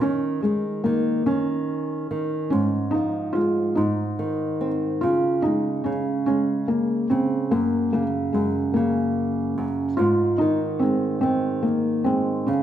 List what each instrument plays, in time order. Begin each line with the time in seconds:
0.01 nylon-string guitar D#3, felt piano C#4
0.42 nylon-string guitar D#3, felt piano G#3
0.84 nylon-string guitar D#3, felt piano A#3
1.26 nylon-string guitar D#3, felt piano C#4
2.11 nylon-string guitar D#3
2.50 nylon-string guitar G#2, felt piano C#4
2.91 nylon-string guitar F3, felt piano D#4
3.33 nylon-string guitar G#3, felt piano F4
3.75 nylon-string guitar G#2, felt piano D#4
4.19 nylon-string guitar D#3
4.61 nylon-string guitar C4
5.01 nylon-string guitar C#3, felt piano F4
5.42 nylon-string guitar G#3, felt piano D#4
5.84 nylon-string guitar C#3, felt piano C#4
6.26 nylon-string guitar G#3, felt piano C#4
6.68 felt piano A#3
7.10 nylon-string guitar C#3, felt piano C4
7.51 nylon-string guitar F#2, felt piano A#3
7.93 nylon-string guitar C#3, felt piano A#3
8.33 nylon-string guitar F#2, felt piano G#3
8.74 nylon-string guitar C#3, felt piano A#3
9.58 nylon-string guitar F#2
9.97 nylon-string guitar G#2, felt piano F4
10.38 nylon-string guitar D#3, felt piano D#4
10.79 nylon-string guitar G#3, felt piano C4
11.21 nylon-string guitar D#3, felt piano C4
11.63 felt piano A#3
12.04 nylon-string guitar G#3, felt piano C4
12.46 nylon-string guitar C#3, felt piano C#4